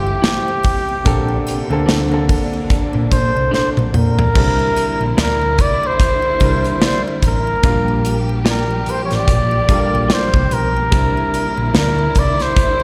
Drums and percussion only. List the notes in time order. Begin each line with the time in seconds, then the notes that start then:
0.07 muted triangle
0.24 snare, closed hi-hat, muted triangle
0.48 muted triangle
0.63 kick, open hi-hat, triangle
0.89 muted triangle
1.05 kick, closed hi-hat, muted triangle
1.29 muted triangle
1.47 closed hi-hat, triangle
1.71 muted triangle
1.89 snare, closed hi-hat, muted triangle
2.12 muted triangle
2.29 kick, open hi-hat, triangle
2.53 muted triangle
2.70 kick, closed hi-hat, muted triangle
2.93 muted triangle
3.12 kick, closed hi-hat, triangle
3.37 muted triangle
3.54 snare, muted triangle
3.77 high tom, muted triangle
3.94 mid tom, triangle
4.19 floor tom, muted triangle
4.35 kick, crash, muted triangle
4.59 muted triangle
4.76 closed hi-hat, triangle
5.01 muted triangle
5.18 snare, closed hi-hat, muted triangle
5.41 muted triangle
5.58 kick, closed hi-hat, triangle
5.83 muted triangle
6.00 kick, closed hi-hat, muted triangle
6.22 muted triangle
6.40 kick, closed hi-hat, triangle
6.64 closed hi-hat, muted triangle
6.82 snare, closed hi-hat, muted triangle
7.08 muted triangle
7.23 kick, closed hi-hat, triangle
7.47 muted triangle
7.63 kick, closed hi-hat, muted triangle
7.88 muted triangle
8.05 closed hi-hat, triangle
8.29 muted triangle
8.46 snare, closed hi-hat, muted triangle
8.71 muted triangle
8.86 closed hi-hat, triangle
9.11 snare, closed hi-hat, muted triangle
9.28 kick, closed hi-hat, muted triangle
9.51 muted triangle
9.69 kick, closed hi-hat, triangle
9.95 muted triangle
10.10 snare, closed hi-hat, muted triangle
10.34 kick, muted triangle
10.51 closed hi-hat, triangle
10.77 muted triangle
10.92 kick, closed hi-hat, muted triangle
11.17 muted triangle
11.34 closed hi-hat, triangle
11.57 muted triangle
11.75 snare, closed hi-hat, muted triangle
11.99 muted triangle
12.15 kick, closed hi-hat, triangle
12.39 snare, closed hi-hat, muted triangle
12.56 kick, closed hi-hat, muted triangle
12.80 muted triangle